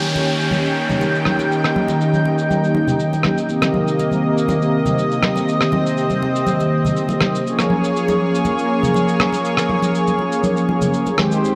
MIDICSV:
0, 0, Header, 1, 5, 480
1, 0, Start_track
1, 0, Tempo, 495868
1, 1461, Time_signature, 4, 2, 24, 8
1, 11180, End_track
2, 0, Start_track
2, 0, Title_t, "Analog synth pad"
2, 0, Program_c, 0, 89
2, 0, Note_on_c, 0, 51, 76
2, 0, Note_on_c, 0, 61, 68
2, 0, Note_on_c, 0, 79, 83
2, 1443, Note_off_c, 0, 61, 0
2, 1462, Note_on_c, 0, 63, 70
2, 3343, Note_off_c, 0, 51, 0
2, 3343, Note_off_c, 0, 79, 0
2, 3362, Note_off_c, 0, 63, 0
2, 3375, Note_on_c, 0, 75, 83
2, 3377, Note_on_c, 0, 48, 75
2, 3377, Note_on_c, 0, 58, 69
2, 5279, Note_off_c, 0, 58, 0
2, 5297, Note_on_c, 0, 60, 70
2, 7179, Note_off_c, 0, 75, 0
2, 7180, Note_off_c, 0, 48, 0
2, 7200, Note_off_c, 0, 60, 0
2, 7218, Note_on_c, 0, 68, 69
2, 7218, Note_on_c, 0, 73, 84
2, 7219, Note_on_c, 0, 58, 76
2, 10783, Note_off_c, 0, 73, 0
2, 10784, Note_off_c, 0, 58, 0
2, 10784, Note_off_c, 0, 68, 0
2, 10820, Note_on_c, 0, 72, 86
2, 10821, Note_on_c, 0, 56, 79
2, 10822, Note_on_c, 0, 67, 71
2, 11180, Note_off_c, 0, 56, 0
2, 11180, Note_off_c, 0, 67, 0
2, 11180, Note_off_c, 0, 72, 0
2, 11180, End_track
3, 0, Start_track
3, 0, Title_t, "Analog polysynth"
3, 0, Program_c, 1, 90
3, 0, Note_on_c, 1, 51, 74
3, 0, Note_on_c, 1, 58, 66
3, 0, Note_on_c, 1, 61, 68
3, 0, Note_on_c, 1, 67, 81
3, 3349, Note_off_c, 1, 51, 0
3, 3352, Note_off_c, 1, 58, 0
3, 3355, Note_off_c, 1, 61, 0
3, 3359, Note_off_c, 1, 67, 0
3, 3370, Note_on_c, 1, 51, 73
3, 3377, Note_on_c, 1, 58, 68
3, 3383, Note_on_c, 1, 60, 68
3, 3389, Note_on_c, 1, 67, 81
3, 7188, Note_off_c, 1, 51, 0
3, 7191, Note_off_c, 1, 58, 0
3, 7195, Note_off_c, 1, 60, 0
3, 7198, Note_off_c, 1, 67, 0
3, 7212, Note_on_c, 1, 53, 73
3, 7219, Note_on_c, 1, 58, 69
3, 7225, Note_on_c, 1, 61, 68
3, 7231, Note_on_c, 1, 68, 79
3, 10789, Note_off_c, 1, 53, 0
3, 10793, Note_off_c, 1, 58, 0
3, 10796, Note_off_c, 1, 61, 0
3, 10799, Note_off_c, 1, 68, 0
3, 10811, Note_on_c, 1, 51, 73
3, 10819, Note_on_c, 1, 56, 66
3, 10826, Note_on_c, 1, 60, 64
3, 10832, Note_on_c, 1, 67, 79
3, 11180, Note_off_c, 1, 51, 0
3, 11180, Note_off_c, 1, 56, 0
3, 11180, Note_off_c, 1, 60, 0
3, 11180, Note_off_c, 1, 67, 0
3, 11180, End_track
4, 0, Start_track
4, 0, Title_t, "Downlifter"
4, 0, Program_c, 2, 103
4, 0, Note_on_c, 2, 60, 65
4, 3381, Note_off_c, 2, 60, 0
4, 11180, End_track
5, 0, Start_track
5, 0, Title_t, "Drums"
5, 26, Note_on_c, 9, 69, 61
5, 123, Note_off_c, 9, 69, 0
5, 150, Note_on_c, 9, 63, 60
5, 154, Note_on_c, 9, 62, 64
5, 154, Note_on_c, 9, 69, 47
5, 247, Note_off_c, 9, 63, 0
5, 250, Note_off_c, 9, 62, 0
5, 251, Note_off_c, 9, 69, 0
5, 395, Note_on_c, 9, 69, 63
5, 492, Note_off_c, 9, 69, 0
5, 493, Note_on_c, 9, 63, 80
5, 508, Note_on_c, 9, 62, 49
5, 512, Note_on_c, 9, 69, 63
5, 590, Note_off_c, 9, 63, 0
5, 605, Note_off_c, 9, 62, 0
5, 608, Note_off_c, 9, 69, 0
5, 635, Note_on_c, 9, 69, 47
5, 732, Note_off_c, 9, 69, 0
5, 867, Note_on_c, 9, 63, 60
5, 870, Note_on_c, 9, 64, 66
5, 873, Note_on_c, 9, 69, 61
5, 963, Note_off_c, 9, 63, 0
5, 967, Note_off_c, 9, 64, 0
5, 970, Note_off_c, 9, 69, 0
5, 980, Note_on_c, 9, 62, 67
5, 987, Note_on_c, 9, 69, 55
5, 1077, Note_off_c, 9, 62, 0
5, 1084, Note_off_c, 9, 69, 0
5, 1112, Note_on_c, 9, 69, 46
5, 1209, Note_off_c, 9, 69, 0
5, 1213, Note_on_c, 9, 37, 49
5, 1224, Note_on_c, 9, 63, 85
5, 1310, Note_off_c, 9, 37, 0
5, 1320, Note_off_c, 9, 63, 0
5, 1347, Note_on_c, 9, 62, 49
5, 1352, Note_on_c, 9, 69, 66
5, 1444, Note_off_c, 9, 62, 0
5, 1448, Note_off_c, 9, 69, 0
5, 1469, Note_on_c, 9, 69, 60
5, 1565, Note_off_c, 9, 69, 0
5, 1589, Note_on_c, 9, 69, 45
5, 1591, Note_on_c, 9, 37, 51
5, 1686, Note_off_c, 9, 69, 0
5, 1688, Note_off_c, 9, 37, 0
5, 1705, Note_on_c, 9, 63, 93
5, 1801, Note_off_c, 9, 63, 0
5, 1823, Note_on_c, 9, 62, 64
5, 1829, Note_on_c, 9, 69, 60
5, 1919, Note_off_c, 9, 62, 0
5, 1926, Note_off_c, 9, 69, 0
5, 1946, Note_on_c, 9, 69, 54
5, 2043, Note_off_c, 9, 69, 0
5, 2067, Note_on_c, 9, 63, 53
5, 2072, Note_on_c, 9, 69, 44
5, 2164, Note_off_c, 9, 63, 0
5, 2169, Note_off_c, 9, 69, 0
5, 2182, Note_on_c, 9, 62, 48
5, 2278, Note_off_c, 9, 62, 0
5, 2307, Note_on_c, 9, 69, 63
5, 2404, Note_off_c, 9, 69, 0
5, 2427, Note_on_c, 9, 63, 86
5, 2432, Note_on_c, 9, 69, 56
5, 2523, Note_off_c, 9, 63, 0
5, 2528, Note_off_c, 9, 69, 0
5, 2555, Note_on_c, 9, 69, 43
5, 2651, Note_off_c, 9, 69, 0
5, 2658, Note_on_c, 9, 62, 64
5, 2755, Note_off_c, 9, 62, 0
5, 2783, Note_on_c, 9, 64, 73
5, 2791, Note_on_c, 9, 63, 53
5, 2791, Note_on_c, 9, 69, 65
5, 2880, Note_off_c, 9, 64, 0
5, 2888, Note_off_c, 9, 63, 0
5, 2888, Note_off_c, 9, 69, 0
5, 2901, Note_on_c, 9, 69, 62
5, 2997, Note_off_c, 9, 69, 0
5, 3030, Note_on_c, 9, 62, 48
5, 3035, Note_on_c, 9, 69, 46
5, 3127, Note_off_c, 9, 62, 0
5, 3129, Note_on_c, 9, 37, 53
5, 3132, Note_off_c, 9, 69, 0
5, 3144, Note_on_c, 9, 63, 84
5, 3226, Note_off_c, 9, 37, 0
5, 3241, Note_off_c, 9, 63, 0
5, 3270, Note_on_c, 9, 69, 66
5, 3366, Note_off_c, 9, 69, 0
5, 3378, Note_on_c, 9, 69, 55
5, 3475, Note_off_c, 9, 69, 0
5, 3504, Note_on_c, 9, 37, 53
5, 3507, Note_on_c, 9, 62, 69
5, 3512, Note_on_c, 9, 69, 46
5, 3601, Note_off_c, 9, 37, 0
5, 3604, Note_off_c, 9, 62, 0
5, 3609, Note_off_c, 9, 69, 0
5, 3620, Note_on_c, 9, 63, 87
5, 3716, Note_off_c, 9, 63, 0
5, 3753, Note_on_c, 9, 69, 64
5, 3850, Note_off_c, 9, 69, 0
5, 3866, Note_on_c, 9, 69, 60
5, 3867, Note_on_c, 9, 62, 42
5, 3963, Note_off_c, 9, 69, 0
5, 3964, Note_off_c, 9, 62, 0
5, 3983, Note_on_c, 9, 63, 56
5, 3991, Note_on_c, 9, 69, 45
5, 4080, Note_off_c, 9, 63, 0
5, 4088, Note_off_c, 9, 69, 0
5, 4237, Note_on_c, 9, 69, 69
5, 4334, Note_off_c, 9, 69, 0
5, 4340, Note_on_c, 9, 63, 91
5, 4344, Note_on_c, 9, 62, 63
5, 4352, Note_on_c, 9, 69, 59
5, 4437, Note_off_c, 9, 63, 0
5, 4441, Note_off_c, 9, 62, 0
5, 4449, Note_off_c, 9, 69, 0
5, 4471, Note_on_c, 9, 69, 42
5, 4568, Note_off_c, 9, 69, 0
5, 4700, Note_on_c, 9, 64, 71
5, 4702, Note_on_c, 9, 62, 48
5, 4707, Note_on_c, 9, 69, 69
5, 4711, Note_on_c, 9, 63, 55
5, 4796, Note_off_c, 9, 64, 0
5, 4799, Note_off_c, 9, 62, 0
5, 4804, Note_off_c, 9, 69, 0
5, 4807, Note_off_c, 9, 63, 0
5, 4827, Note_on_c, 9, 69, 60
5, 4924, Note_off_c, 9, 69, 0
5, 4949, Note_on_c, 9, 69, 41
5, 5046, Note_off_c, 9, 69, 0
5, 5056, Note_on_c, 9, 63, 87
5, 5058, Note_on_c, 9, 37, 60
5, 5153, Note_off_c, 9, 63, 0
5, 5155, Note_off_c, 9, 37, 0
5, 5186, Note_on_c, 9, 62, 67
5, 5195, Note_on_c, 9, 69, 61
5, 5283, Note_off_c, 9, 62, 0
5, 5292, Note_off_c, 9, 69, 0
5, 5308, Note_on_c, 9, 69, 59
5, 5404, Note_off_c, 9, 69, 0
5, 5427, Note_on_c, 9, 37, 56
5, 5431, Note_on_c, 9, 69, 39
5, 5524, Note_off_c, 9, 37, 0
5, 5528, Note_off_c, 9, 69, 0
5, 5537, Note_on_c, 9, 62, 47
5, 5545, Note_on_c, 9, 63, 88
5, 5634, Note_off_c, 9, 62, 0
5, 5642, Note_off_c, 9, 63, 0
5, 5677, Note_on_c, 9, 69, 64
5, 5774, Note_off_c, 9, 69, 0
5, 5782, Note_on_c, 9, 69, 54
5, 5879, Note_off_c, 9, 69, 0
5, 5905, Note_on_c, 9, 63, 59
5, 5907, Note_on_c, 9, 69, 41
5, 6002, Note_off_c, 9, 63, 0
5, 6003, Note_off_c, 9, 69, 0
5, 6026, Note_on_c, 9, 62, 57
5, 6123, Note_off_c, 9, 62, 0
5, 6155, Note_on_c, 9, 69, 68
5, 6252, Note_off_c, 9, 69, 0
5, 6259, Note_on_c, 9, 63, 85
5, 6262, Note_on_c, 9, 69, 65
5, 6356, Note_off_c, 9, 63, 0
5, 6359, Note_off_c, 9, 69, 0
5, 6389, Note_on_c, 9, 69, 41
5, 6393, Note_on_c, 9, 62, 46
5, 6486, Note_off_c, 9, 69, 0
5, 6490, Note_off_c, 9, 62, 0
5, 6627, Note_on_c, 9, 63, 52
5, 6628, Note_on_c, 9, 64, 61
5, 6640, Note_on_c, 9, 69, 69
5, 6724, Note_off_c, 9, 63, 0
5, 6725, Note_off_c, 9, 64, 0
5, 6736, Note_off_c, 9, 69, 0
5, 6742, Note_on_c, 9, 69, 54
5, 6839, Note_off_c, 9, 69, 0
5, 6860, Note_on_c, 9, 62, 66
5, 6871, Note_on_c, 9, 69, 41
5, 6957, Note_off_c, 9, 62, 0
5, 6968, Note_off_c, 9, 69, 0
5, 6975, Note_on_c, 9, 37, 59
5, 6984, Note_on_c, 9, 63, 89
5, 7072, Note_off_c, 9, 37, 0
5, 7080, Note_off_c, 9, 63, 0
5, 7117, Note_on_c, 9, 69, 68
5, 7214, Note_off_c, 9, 69, 0
5, 7233, Note_on_c, 9, 69, 60
5, 7329, Note_off_c, 9, 69, 0
5, 7344, Note_on_c, 9, 37, 55
5, 7349, Note_on_c, 9, 62, 47
5, 7354, Note_on_c, 9, 69, 46
5, 7441, Note_off_c, 9, 37, 0
5, 7446, Note_off_c, 9, 62, 0
5, 7451, Note_off_c, 9, 69, 0
5, 7454, Note_on_c, 9, 63, 77
5, 7550, Note_off_c, 9, 63, 0
5, 7590, Note_on_c, 9, 69, 67
5, 7687, Note_off_c, 9, 69, 0
5, 7709, Note_on_c, 9, 69, 65
5, 7806, Note_off_c, 9, 69, 0
5, 7825, Note_on_c, 9, 62, 69
5, 7826, Note_on_c, 9, 69, 47
5, 7828, Note_on_c, 9, 63, 60
5, 7922, Note_off_c, 9, 62, 0
5, 7922, Note_off_c, 9, 69, 0
5, 7924, Note_off_c, 9, 63, 0
5, 8082, Note_on_c, 9, 69, 74
5, 8178, Note_on_c, 9, 63, 76
5, 8179, Note_off_c, 9, 69, 0
5, 8179, Note_on_c, 9, 69, 57
5, 8182, Note_on_c, 9, 62, 43
5, 8275, Note_off_c, 9, 63, 0
5, 8276, Note_off_c, 9, 69, 0
5, 8278, Note_off_c, 9, 62, 0
5, 8311, Note_on_c, 9, 69, 46
5, 8408, Note_off_c, 9, 69, 0
5, 8548, Note_on_c, 9, 64, 66
5, 8549, Note_on_c, 9, 63, 60
5, 8559, Note_on_c, 9, 69, 69
5, 8645, Note_off_c, 9, 64, 0
5, 8646, Note_off_c, 9, 63, 0
5, 8656, Note_off_c, 9, 69, 0
5, 8658, Note_on_c, 9, 62, 64
5, 8673, Note_on_c, 9, 69, 59
5, 8755, Note_off_c, 9, 62, 0
5, 8770, Note_off_c, 9, 69, 0
5, 8794, Note_on_c, 9, 69, 49
5, 8890, Note_off_c, 9, 69, 0
5, 8903, Note_on_c, 9, 63, 80
5, 8904, Note_on_c, 9, 37, 61
5, 9000, Note_off_c, 9, 63, 0
5, 9001, Note_off_c, 9, 37, 0
5, 9027, Note_on_c, 9, 62, 45
5, 9038, Note_on_c, 9, 69, 65
5, 9124, Note_off_c, 9, 62, 0
5, 9135, Note_off_c, 9, 69, 0
5, 9146, Note_on_c, 9, 69, 68
5, 9243, Note_off_c, 9, 69, 0
5, 9266, Note_on_c, 9, 37, 56
5, 9277, Note_on_c, 9, 69, 49
5, 9363, Note_off_c, 9, 37, 0
5, 9374, Note_off_c, 9, 69, 0
5, 9384, Note_on_c, 9, 63, 82
5, 9481, Note_off_c, 9, 63, 0
5, 9510, Note_on_c, 9, 62, 69
5, 9517, Note_on_c, 9, 69, 74
5, 9607, Note_off_c, 9, 62, 0
5, 9614, Note_off_c, 9, 69, 0
5, 9630, Note_on_c, 9, 69, 56
5, 9727, Note_off_c, 9, 69, 0
5, 9751, Note_on_c, 9, 69, 48
5, 9758, Note_on_c, 9, 63, 53
5, 9848, Note_off_c, 9, 69, 0
5, 9854, Note_off_c, 9, 63, 0
5, 9861, Note_on_c, 9, 62, 42
5, 9958, Note_off_c, 9, 62, 0
5, 9991, Note_on_c, 9, 69, 65
5, 10088, Note_off_c, 9, 69, 0
5, 10102, Note_on_c, 9, 63, 82
5, 10102, Note_on_c, 9, 69, 62
5, 10199, Note_off_c, 9, 63, 0
5, 10199, Note_off_c, 9, 69, 0
5, 10229, Note_on_c, 9, 69, 45
5, 10325, Note_off_c, 9, 69, 0
5, 10345, Note_on_c, 9, 62, 62
5, 10442, Note_off_c, 9, 62, 0
5, 10469, Note_on_c, 9, 64, 69
5, 10471, Note_on_c, 9, 69, 75
5, 10474, Note_on_c, 9, 63, 57
5, 10566, Note_off_c, 9, 64, 0
5, 10568, Note_off_c, 9, 69, 0
5, 10571, Note_off_c, 9, 63, 0
5, 10587, Note_on_c, 9, 69, 57
5, 10684, Note_off_c, 9, 69, 0
5, 10710, Note_on_c, 9, 69, 43
5, 10713, Note_on_c, 9, 62, 47
5, 10807, Note_off_c, 9, 69, 0
5, 10810, Note_off_c, 9, 62, 0
5, 10821, Note_on_c, 9, 37, 64
5, 10826, Note_on_c, 9, 63, 77
5, 10918, Note_off_c, 9, 37, 0
5, 10923, Note_off_c, 9, 63, 0
5, 10955, Note_on_c, 9, 69, 71
5, 11052, Note_off_c, 9, 69, 0
5, 11080, Note_on_c, 9, 69, 61
5, 11176, Note_off_c, 9, 69, 0
5, 11180, End_track
0, 0, End_of_file